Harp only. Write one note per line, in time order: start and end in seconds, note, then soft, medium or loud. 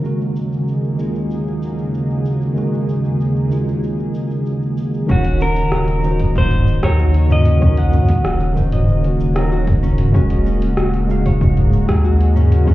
5.09 5.41 C#4 loud
5.26 6.86 F#5 medium
5.41 7.30 C#4 medium
5.72 6.98 F#4 medium
6.20 7.98 D#5 medium
6.84 8.96 A#4 medium
6.99 8.25 F#4 medium
7.30 7.61 C#4 loud
7.61 7.93 C#4 loud
7.78 9.39 F#5 medium
7.93 9.82 C#4 medium
8.25 9.51 F#4 medium
8.73 10.30 D#5 medium
9.36 11.48 A#4 medium
9.52 10.77 F#4 medium
9.83 10.14 C#4 loud
10.14 10.46 C#4 loud
10.30 12.09 D#5 medium
10.46 12.35 C#4 medium
10.77 12.04 F#4 medium
11.26 12.74 C#5 medium
11.88 12.74 G#4 medium
12.04 12.74 F#4 medium
12.36 12.67 C#4 loud
12.67 12.74 C#4 loud